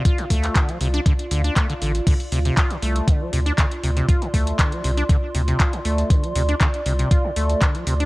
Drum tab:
CC |----------------|x---------------|----------------|----------------|
HH |xxoxxxoxxxoxxxox|xxoxxxoxx-oxxxox|xxoxxxoxx-oxxxox|xxoxxxoxx-oxxxox|
CP |---xx-------x---|----x-------x---|----x-------x---|----x-------x---|
BD |o-o-o---o---o---|o---o---o---o---|o-o-o---o---o---|o---o---o---o---|